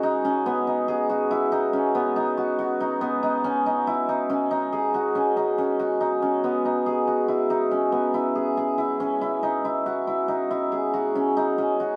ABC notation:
X:1
M:7/4
L:1/8
Q:1/4=140
K:B
V:1 name="Hammered dulcimer"
D C B, D G F E D C B, D F F D | B, D C D E D C D G F C D C F | D C B, D G F E D C B, E G G E | C E D E F E D E G F C D C F |]